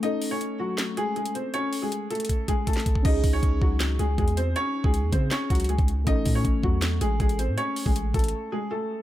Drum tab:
CC |------------------------------------------------------------------------------------------------|------------------------------------------------------------------------------------------------|x-----------------------------------------------------------------------------------------------|------------------------------------------------------------------------------------------------|
HH |x-----------o-----------x-----------------------x-----------x-----------x-----x-----x-----------|x-----------o-----------x-----------x--x--x--x--x-----------x-----------x---x---x---x-----------|------------o-----------x-----------------------x-----------x-----------x-----x-----x-----------|x-----------------------x-----------x-----------x-----------x--x--x--x--x-----x-----x-----------|
CP |------------------------------------------------x-----------------------------------------------|------------------------------------------------------------------------------------------------|------------------------------------------------x-----------------------------------------------|------------------------------------------------x-----------------------------------------------|
SD |------------------------------------------------o-----------------------------------------------|------------------------------------------------------------------------------o-----------------|------------------------------------------------o-----------------------------------------------|------------------------------------------------o-----------------------------------------------|
BD |------------------------------------------------------------------------------------------------|------------------------------------------------o-----------o-----------o-----------o-----o-----|o-----------o-----------o-----------o-----------------------------------o-----------------------|------------------o-----------------o-----------------------o-----------------o-----------------|

CC |------------------------------------------------------------------------------------------------|------------------------------------------------------------------------------------------------|
HH |x-----------o-----------x-----------------------x-----------x-----------x-----x-----x-----------|x-----------o-----------x-----------x--x--x--x--------------------------------------------------|
CP |------------------------------------------------x-----------------------------------------------|------------------------------------------------------------------------------------------------|
SD |------------------------------------------------o-----------------------------------------------|------------------------------------------------------------------------------------------------|
BD |o-----------o-----------o-----------o-----------------------------------o-----------------------|------------------o-----------------o-----------------------------------------------------------|